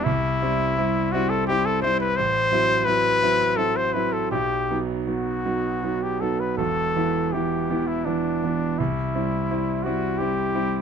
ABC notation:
X:1
M:3/4
L:1/16
Q:1/4=84
K:Clyd
V:1 name="Trumpet"
E6 F A G A c B | c4 B4 A c B A | G3 z F4- F G A B | A4 G3 E D4 |
E6 F2 G4 |]
V:2 name="Grand piano"
C,,2 [G,CE]2 [G,CE]2 [G,CE]2 [G,CE]2 [G,CE]2 | A,,,2 [F,CE]2 [F,CE]2 [F,CE]2 [F,CE]2 [F,CE]2 | B,,,2 [F,B,^D]2 [F,B,D]2 [F,B,D]2 [F,B,D]2 [F,B,D]2 | [E,,,E,,]2 [E,B,E]2 [E,B,E]2 [E,B,E]2 [E,B,E]2 [E,B,E]2 |
C,,2 [G,CE]2 [G,CE]2 [G,CE]2 [G,CE]2 [G,CE]2 |]